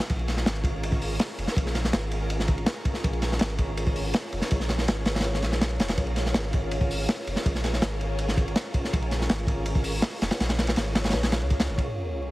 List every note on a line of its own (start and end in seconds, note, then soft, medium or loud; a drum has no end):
0.09 0.45 A#1 medium
0.09 0.35 C#4 loud
0.09 0.35 F4 medium
0.09 0.35 G#4 medium
0.09 0.35 A#4 medium
0.09 0.35 C#5 loud
0.09 kick loud
0.09 ride medium
0.19 ride soft
0.28 snare soft
0.28 ride medium
0.37 1.36 C#4 medium
0.37 1.36 F4 medium
0.37 1.36 G#4 medium
0.37 1.36 A#4 medium
0.37 1.36 C#5 medium
0.37 snare soft
0.46 1.18 G#1 medium
0.46 snare loud
0.46 ride medium
0.56 ride soft
0.64 kick loud
0.64 ride medium
0.83 ride medium
0.92 kick medium
1.02 open hi-hat medium
1.19 snare loud
1.19 ride medium
1.38 1.47 F1 loud
1.38 1.54 C#4 medium
1.38 1.54 F4 medium
1.38 1.54 G#4 medium
1.38 1.54 A#4 medium
1.38 1.54 C#5 medium
1.38 ride medium
1.47 snare medium
1.57 1.92 A#1 medium
1.57 1.82 C#4 loud
1.57 1.82 F4 medium
1.57 1.82 G#4 medium
1.57 1.82 A#4 medium
1.57 1.82 C#5 loud
1.57 kick loud
1.57 ride medium
1.66 snare soft
1.75 snare soft
1.75 ride medium
1.84 2.83 C#4 medium
1.84 2.83 F4 medium
1.84 2.83 G#4 medium
1.84 2.83 A#4 medium
1.84 2.83 C#5 medium
1.84 snare medium
1.93 2.66 G#1 medium
1.93 snare loud
1.93 ride medium
2.11 ride medium
2.30 ride medium
2.40 snare soft
2.48 kick loud
2.48 ride medium
2.58 ride soft
2.66 snare loud
2.66 ride medium
2.85 3.02 C#4 medium
2.85 3.02 F4 medium
2.85 3.02 G#4 medium
2.85 3.02 A#4 medium
2.85 3.02 C#5 medium
2.85 kick medium
2.85 ride medium
2.94 snare soft
3.04 3.39 A#1 loud
3.04 3.29 C#4 loud
3.04 3.30 F4 medium
3.04 3.29 G#4 medium
3.04 3.29 A#4 medium
3.04 3.29 C#5 loud
3.04 kick loud
3.04 ride medium
3.13 ride soft
3.22 snare soft
3.22 ride medium
3.32 4.31 C#4 medium
3.32 4.31 F4 medium
3.32 4.31 G#4 medium
3.32 4.31 A#4 medium
3.32 4.31 C#5 medium
3.32 snare soft
3.39 4.13 G#1 medium
3.39 snare loud
3.39 ride medium
3.50 ride soft
3.58 kick medium
3.58 ride medium
3.77 ride medium
3.87 kick loud
3.96 open hi-hat medium
4.14 snare loud
4.14 ride medium
4.33 4.41 F1 loud
4.33 4.49 C#4 medium
4.33 4.49 F4 medium
4.33 4.49 G#4 medium
4.33 4.49 A#4 medium
4.33 4.49 C#5 medium
4.33 ride medium
4.41 snare medium
4.51 4.87 A#1 loud
4.51 4.76 C#4 loud
4.51 4.76 F4 medium
4.51 4.76 G#4 medium
4.51 4.76 A#4 medium
4.51 4.76 C#5 loud
4.51 kick loud
4.51 ride medium
4.60 snare soft
4.69 snare soft
4.69 ride medium
4.78 5.41 C#4 medium
4.78 5.41 F4 medium
4.78 5.41 G#4 medium
4.78 5.41 A#4 medium
4.78 5.41 C#5 medium
4.78 snare soft
4.87 5.44 G#1 medium
4.87 snare loud
4.87 ride loud
5.05 snare loud
5.05 ride medium
5.15 snare medium
5.15 ride medium
5.20 snare medium
5.20 ride medium
5.24 ride medium
5.34 snare soft
5.42 5.78 A#1 medium
5.42 5.78 C#4 loud
5.42 5.78 F4 medium
5.42 5.78 G#4 medium
5.42 5.78 A#4 medium
5.42 5.78 C#5 loud
5.42 snare soft
5.42 ride medium
5.52 snare soft
5.61 snare loud
5.61 ride medium
5.71 ride soft
5.80 5.96 F1 loud
5.80 5.96 C#4 medium
5.80 5.96 F4 medium
5.80 5.96 G#4 medium
5.80 5.96 A#4 medium
5.80 5.96 C#5 medium
5.80 snare loud
5.80 ride medium
5.88 snare loud
5.88 ride medium
5.97 6.33 A#1 loud
5.97 6.24 C#4 loud
5.97 6.24 F4 medium
5.97 6.24 G#4 medium
5.97 6.24 A#4 medium
5.97 6.24 C#5 loud
5.97 kick loud
5.97 ride medium
6.07 ride soft
6.16 snare soft
6.16 ride medium
6.26 7.25 C#4 medium
6.26 7.25 F4 medium
6.26 7.25 G#4 medium
6.26 7.25 A#4 medium
6.26 7.25 C#5 medium
6.26 snare soft
6.34 7.07 G#1 medium
6.34 snare loud
6.34 ride medium
6.44 ride soft
6.53 kick medium
6.53 ride medium
6.71 ride medium
6.81 kick medium
6.91 open hi-hat medium
7.09 snare loud
7.09 ride medium
7.27 7.35 F1 loud
7.27 7.44 C#4 medium
7.27 7.44 F4 medium
7.27 7.44 G#4 medium
7.27 7.44 A#4 medium
7.27 7.44 C#5 medium
7.27 ride medium
7.36 snare medium
7.45 7.81 A#1 loud
7.45 7.71 C#4 medium
7.45 7.71 F4 medium
7.45 7.71 G#4 medium
7.45 7.71 A#4 medium
7.45 7.71 C#5 loud
7.45 kick loud
7.45 ride medium
7.55 snare soft
7.64 snare soft
7.64 ride medium
7.73 8.72 C#4 medium
7.73 8.72 F4 medium
7.73 8.72 G#4 medium
7.73 8.72 A#4 medium
7.73 8.72 C#5 medium
7.73 snare soft
7.82 8.54 G#1 medium
7.82 snare loud
7.82 ride medium
8.01 ride medium
8.19 ride medium
8.28 snare soft
8.37 kick loud
8.37 ride medium
8.48 ride soft
8.56 snare loud
8.56 ride medium
8.74 8.91 C#4 medium
8.74 8.91 F4 medium
8.74 8.91 G#4 medium
8.74 8.91 A#4 medium
8.74 8.91 C#5 medium
8.74 kick medium
8.74 ride medium
8.84 snare soft
8.93 9.28 A#1 loud
8.93 9.18 C#4 loud
8.93 9.18 F4 medium
8.93 9.18 G#4 medium
8.93 9.18 A#4 medium
8.93 9.18 C#5 loud
8.93 kick loud
8.93 ride medium
9.02 ride soft
9.11 snare soft
9.11 ride medium
9.21 10.19 C#4 medium
9.21 10.19 F4 medium
9.21 10.19 G#4 medium
9.21 10.19 A#4 medium
9.21 10.20 C#5 medium
9.21 snare soft
9.29 10.02 G#1 medium
9.29 snare loud
9.29 ride medium
9.39 ride soft
9.47 kick loud
9.47 ride medium
9.66 ride medium
9.75 kick medium
9.84 open hi-hat medium
10.02 snare loud
10.02 ride loud
10.21 10.30 F1 loud
10.21 10.38 C#4 medium
10.21 10.38 F4 medium
10.21 10.38 G#4 medium
10.21 10.38 A#4 medium
10.21 10.38 C#5 medium
10.21 snare loud
10.21 ride medium
10.31 snare loud
10.31 ride medium
10.40 10.75 A#1 loud
10.40 10.66 C#4 loud
10.40 10.66 F4 medium
10.40 10.66 G#4 medium
10.40 10.66 A#4 medium
10.40 10.66 C#5 loud
10.40 snare loud
10.40 ride medium
10.49 snare medium
10.49 ride medium
10.59 snare medium
10.59 ride medium
10.67 11.67 C#4 medium
10.67 11.67 F4 medium
10.67 11.67 G#4 medium
10.67 11.67 A#4 medium
10.67 11.67 C#5 medium
10.67 snare medium
10.67 ride medium
10.76 11.13 G#1 medium
10.76 snare loud
10.76 ride medium
10.95 snare loud
10.95 ride medium
11.04 snare medium
11.04 ride medium
11.09 snare medium
11.09 ride medium
11.13 11.43 A#1 loud
11.13 snare loud
11.13 ride medium
11.23 snare loud
11.23 ride medium
11.32 snare loud
11.32 ride medium
11.41 11.67 C#2 medium
11.41 ride soft
11.50 kick medium
11.50 ride medium
11.60 snare loud
11.60 ride medium
11.69 11.77 G#1 medium
11.69 11.85 C#4 medium
11.69 11.85 F4 medium
11.69 11.85 G#4 medium
11.69 11.85 A#4 medium
11.69 11.85 C#5 medium
11.69 ride soft
11.78 kick medium
11.78 ride medium
11.87 12.31 C#4 medium
11.87 12.31 F4 medium
11.87 12.31 G#4 medium
11.87 12.31 A#4 medium
11.87 12.31 C#5 loud
11.87 sub drop medium